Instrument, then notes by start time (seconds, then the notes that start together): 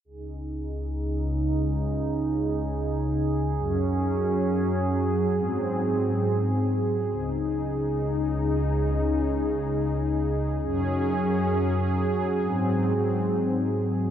analog synth pad
0.05 C#2 C#3 D#4 G#4
3.58 F#2 F#3 C#4
5.34 G#2 C4
7.11 C#2 C#3 D#4
10.63 F#2 F#3 C#4 G#4
12.40 G#2 C4